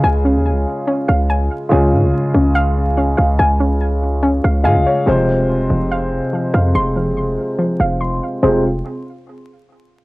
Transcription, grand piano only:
\new Staff \with { instrumentName = "Grand piano" } { \time 4/4 \key f \minor \tempo 4 = 143 << { r1 | r1 | r2. f''8 des''8 | r1 |
r1 | r1 | } \\ { <des aes f' aes'>1 | <des aes f' aes'>1~ | <des aes f' aes'>2. <des aes f' aes'>4 | <c aes f' c''>1~ |
<c aes f' c''>1 | <c aes f' c''>8 r2. r8 | } >> }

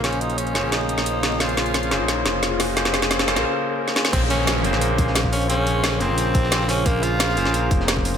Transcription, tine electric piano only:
\new Staff \with { instrumentName = "Tine electric piano" } { \time 4/4 \key bes \minor \tempo 4 = 176 <bes des' aes' c''>4. <bes des' aes' c''>2~ <bes des' aes' c''>8 | <bes des' aes' c''>4. <bes des' aes' c''>2~ <bes des' aes' c''>8 | <bes des' aes' c''>4. <bes des' aes' c''>8 r2 | <bes des' aes' c''>4. <bes des' aes' c''>2~ <bes des' aes' c''>8 |
<bes des' aes' c''>4. <des bes aes' c''>2~ <des bes aes' c''>8 | <bes des' aes' c''>4. <bes des' aes' c''>2~ <bes des' aes' c''>8 | }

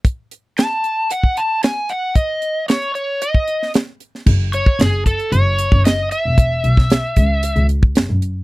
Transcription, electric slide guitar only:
\new Staff \with { instrumentName = "Electric slide guitar" } { \time 4/4 \key fis \dorian \tempo 4 = 114 r4 a''4 fis''8 a''8 gis''8 fis''8 | dis''4 cis''8 cis''8 dis''4 r4 | r8 cis''8 gis'8 a'8 cis''4 dis''8 e''8~ | e''2~ e''8 r4. | }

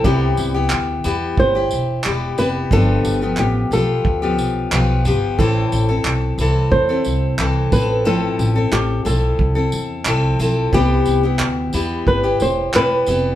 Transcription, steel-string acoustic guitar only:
\new Staff \with { instrumentName = "Steel-string acoustic guitar" } { \time 4/4 \key c \major \tempo 4 = 90 <c g b e' g'>8. <b e' g'>8. <g b e' g'>8. <e' g'>8. <g b e' g'>8 <g b e' g'>8 | <g, d f b f' g'>8. <f b f' g'>8. <f b f' g'>8. <f b f' g'>8. <f b f' g'>8 <f b f' g'>8 | <a, e c' e' a'>8. <c' e' a'>8. <e c' e' a'>8. <c' e' a'>8. <e c' e' a'>8 <f c' e' a'>8 | <a, f c' e' a'>8. <c' e' a'>8. <f c' e' a'>8. <c' e' a'>8. <f c' e' a'>8 <f c' e' a'>8 |
<c g b e' g'>8. <b e' g'>8. <g b e' g'>8. <e' g'>8. <g b e' g'>8 <g b e' g'>8 | }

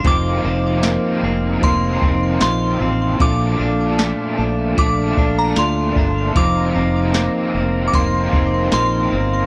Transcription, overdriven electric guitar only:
\new Staff \with { instrumentName = "Overdriven electric guitar" } { \clef bass \time 4/4 \key f \mixolydian \tempo 4 = 76 <f, c ees bes c'>4 <c ees bes c'>4 <f, c ees bes c'>2 | <bes, f a d'>2 <bes, f a d'>2 | <f, c ees bes c'>4 <c ees bes c'>4 <f, c ees bes c'>2 | }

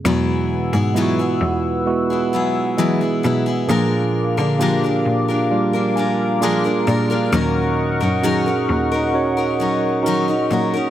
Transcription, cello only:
\new Staff \with { instrumentName = "Cello" } { \clef bass \time 4/4 \key e \lydian \tempo 4 = 66 e,8. gis,8. e,2 b,8 | ais,8. d8. ais,2 ais,8 | dis,8. fis,8. dis,2 ais,8 | }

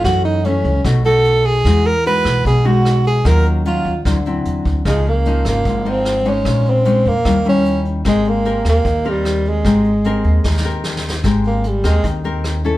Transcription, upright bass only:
\new Staff \with { instrumentName = "Upright bass" } { \clef bass \time 4/4 \key aes \major \tempo 4 = 150 ges,4. des,8 b,,2 | e,4. b,,8 b,,2 | ees,4. ees,8 d,4 e,8 d,8 | des,4. aes,,8 aes,,2 |
bes,,4. f,8 ees,2 | aes,,4. ees,8 ees,2 | aes,,4. ees,8 ees,2 | aes,,4. ees,8 ees,2 | }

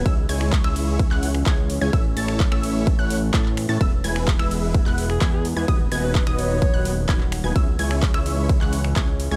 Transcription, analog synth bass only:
\new Staff \with { instrumentName = "Analog synth bass" } { \clef bass \time 4/4 \key cis \minor \tempo 4 = 128 cis,8 cis,8. cis,4 cis,8. cis,8. cis,16 | a,,8 a,,8. a,,4 a,,8. a,8. a,16 | e,,8 e,,8. e,,4 e,,8. e,8. e,16 | dis,,8 dis,,8. dis,,4 dis,,8. dis,,8. dis,,16 |
cis,8 cis,8. cis,4 cis,8. cis,8. cis,16 | }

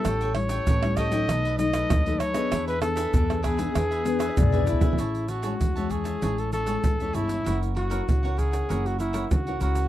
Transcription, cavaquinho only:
\new Staff \with { instrumentName = "Cavaquinho" } { \time 4/4 \key a \major \tempo 4 = 97 <g' a' cis'' g''>16 <a' cis'' g''>16 r16 <a' cis'' g''>16 <g' a' cis'' g''>8 <g' a' cis'' g''>16 <a' cis'' g''>16 <dis' a' b' dis''>16 <a' b' dis''>16 r16 <a' b' dis''>8 <a' b' dis''>16 <dis' a' b' dis''>16 <a' b' dis''>16 | <d' gis' b' e''>16 <gis' b' e''>16 r16 <gis' b' e''>16 <d' gis' b' e''>8 <d' gis' b' e''>16 <gis' b' e''>16 <d' gis' b' e''>16 <gis' b' e''>16 r16 <gis' b' e''>8 <gis' b' e''>16 <d' gis' b' e''>16 <gis' b' e''>16 | <gis' cis'' e'' a''>8 <gis' cis'' e'' a''>16 <gis' cis'' e'' a''>16 r16 <cis'' e'' a''>16 <gis' cis'' e'' a''>16 <cis'' e'' a''>16 <gis' cis'' e'' a''>8 <gis' cis'' e'' a''>16 <gis' cis'' e'' a''>16 r16 <cis'' e'' a''>16 <gis' cis'' e'' a''>16 <cis'' e'' a''>16 | <e' ais' cis'' fis''>8 <e' ais' cis'' fis''>16 <e' ais' cis'' fis''>16 r16 <ais' cis'' fis''>16 <e' ais' cis'' fis''>16 <ais' cis'' fis''>16 <e' ais' cis'' fis''>8 <e' ais' cis'' fis''>16 <e' ais' cis'' fis''>16 r16 <ais' cis'' fis''>16 <e' ais' cis'' fis''>16 <ais' cis'' fis''>16 | }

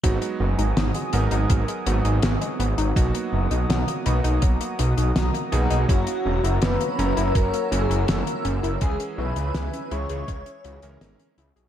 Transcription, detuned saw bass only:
\new Staff \with { instrumentName = "Detuned saw bass" } { \clef bass \time 4/4 \key gis \minor \tempo 4 = 82 gis,,16 r16 fis,,16 gis,,16 gis,,16 r16 gis,,16 gis,,16 gis,,16 r16 gis,,16 gis,,16 gis,,16 r16 gis,,16 gis,,16 | b,,16 r16 fis,,16 b,,16 b,,16 r16 b,,16 b,,16 b,,16 r16 b,,16 b,,16 b,,16 r16 b,,16 b,,16 | fis,,16 r16 e,,16 fis,,16 fis,,16 r16 fis,,16 fis,,16 fis,,16 r16 fis,,16 fis,,16 fis,,16 r16 fis,,16 fis,,16 | cis,16 r16 b,,16 cis,16 cis,16 r16 cis,16 cis,16 cis,16 r16 cis,16 cis,16 gis,,16 r16 cis,16 b,,16 | }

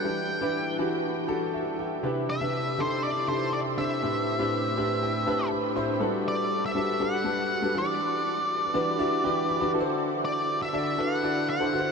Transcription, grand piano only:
\new Staff \with { instrumentName = "Grand piano" } { \time 4/4 \key e \minor \tempo 4 = 121 << { r2. e''8 <e'' g''>8~ | <e'' g''>8 r2. r8 | r4. e''8 g''8 a''8 b''8 c'''8 | r1 |
r4. d''8 e''8 g''8 b''8 a''8 | r1 | } \\ { <e d' e' g' b'>8. <e d' e' g' b'>8. <e d' fis' g' b'>4 <e d' fis' g' a'>4 r8 | <c d' e' g' b'>8. <c d' e' g' b'>8. <c d' dis' e' g' a'>4 <c d' e' g' a'>4 <c d' e' g' c''>8 | <a, c' d' e' g' b'>8. <a, c' d' e' g' b'>8. <a, c' d' e' g' b'>4 <a, c' d' e' g' b'>4 <a, c' d' e' g' c''>8 | <g d' fis' a' b'>4~ <g d' fis' a' b'>16 r16 <g d' fis' a' b'>8 <g d' fis' a' b'>8 <g d' fis' a' b'>8. <g d' fis' a' b'>16 <e d' fis' g' b'>8~ |
<e d' fis' g' b'>4~ <e d' fis' g' b'>16 r16 <e d' fis' g' b'>8 <e d' fis' g' d''>8 <e d' fis' g' b'>8. <e d' fis' g' b'>16 <d e' fis' a' b' c''>8~ | <d e' fis' a' b' c''>4~ <d e' fis' a' b' c''>16 r16 <d e' fis' a' d''>8 <d e' fis' a' b'>8 <d e' fis' a' d''>8. <d e' fis' a' c''>16 <d e' fis' a' b' c''>8 | } >> }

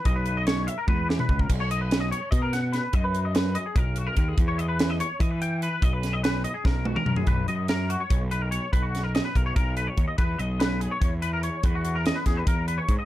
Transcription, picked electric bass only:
\new Staff \with { instrumentName = "Picked electric bass" } { \clef bass \time 7/8 \key b \major \tempo 4 = 145 b,,2 e,4 cis,8 | b,,2 b,4. | fis,2 b,,4 dis,8 | e,2 e4. |
b,,2 b,,4 fis,8 | b,,8 fis,4. b,,4. | b,,4. b,,8 b,,4 dis,16 r16 | e,8 b,,4. e,4. |
e,4. e,8 e,4 gis,16 r16 | }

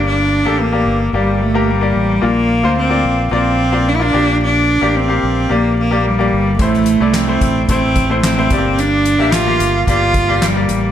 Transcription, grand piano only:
<<
  \new Staff \with { instrumentName = "Grand piano" } { \time 4/4 \key g \dorian \tempo 4 = 110 <bes g' d''>8 r16 <bes g' a'>8 <bes g' d''>8. <bes g' d''>8. <bes g' bes'>8 <bes g' d''>8. | <bes f' d''>8. <bes f' c''>8 <bes f' d''>8. <bes f' d''>8. <bes f' d''>8 <bes f' d''>16 <bes g' d''>8~ | <bes g' d''>8 r16 <bes g' d''>8 <bes g' f''>8. <bes g' d''>8. <bes g' d''>8 <bes g' d''>8. | <a e' c''>8. <a e' d''>8 <a e' c''>8. <a e' c''>8. <a e' c''>8 <a e' c''>16 <a bes g' d''>8~ |
<a bes g' d''>8 r16 <bes g' e''>8 <bes g' f''>8. <bes g' d''>8. <bes g' d''>8 <bes g' d''>8. | }
  \new Staff \with { instrumentName = "Grand piano" } { \clef bass \time 4/4 \key g \dorian g,4 r2. | bes,4. r2 bes,8~ | bes,4 r2. | a,4. r2 g,8~ |
g,4 r2. | }
>>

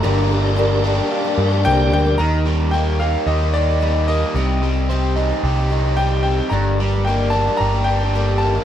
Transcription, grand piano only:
\new Staff \with { instrumentName = "Grand piano" } { \time 4/4 \key g \minor \tempo 4 = 111 bes''2. g''8 g''8 | bes''4 g''8 f''8 ees''8 d''4 ees''8~ | ees''2. g''8 g''8 | bes''4 g''8 a''8 bes''8 g''4 a''8 | }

